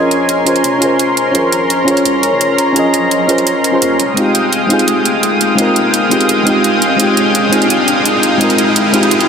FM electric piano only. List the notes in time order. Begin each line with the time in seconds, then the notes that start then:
Already playing: C#4 F4 G#4 A#4 C5 C#5 D#5
0.45 C#4 F4 G#4 A#4 C5
0.79 C#4 F4 G#4
0.83 A#4 C5
1.32 C#4 F4 G#4
1.36 A#4 C5
1.85 C#4 F4 G#4
1.90 A#4 C#5
2.73 C#4 F4 G#4
2.78 A#4 D#5
3.27 C#4 F4 G#4 A#4 C5
3.72 C#4 F4 G#4 A#4 C5
4.14 G#3 C4 D#4
4.19 F4 G4
4.67 G#3 C4 D#4
4.72 F4 G#4
5.55 G#3 C4 D#4
5.60 F4 A#4
6.10 G#3 C4 D#4 F4 G4
6.43 G#3 C4 D#4
6.48 F4 G4
6.96 G#3 C4 D#4
7.01 F4 G4
7.49 G#3 C4 D#4
7.54 F4 G#4
8.38 G#3 C4 D#4
8.42 F4 A#4
8.92 G#3 C4 D#4 F4 G4